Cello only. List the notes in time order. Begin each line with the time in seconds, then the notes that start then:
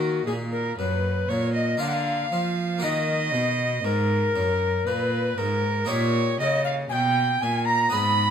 Already playing: D#3
0.27 A#2
0.78 F#2
1.29 A#2
1.80 D3
2.32 F3
2.82 D#3
3.33 B2
3.84 G#2
4.35 F#2
4.86 A#2
5.38 G#2
5.88 A#2
6.40 C#3
6.91 B2
7.42 A#2
7.93 G#2